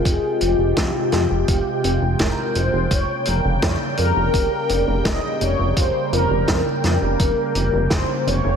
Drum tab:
HH |xxxxxxxx|xxxxxxxx|xxxxxxxx|
SD |--oo--o-|--o---o-|--oo--o-|
BD |o-o-o-o-|o-o-o-o-|o-o-o-o-|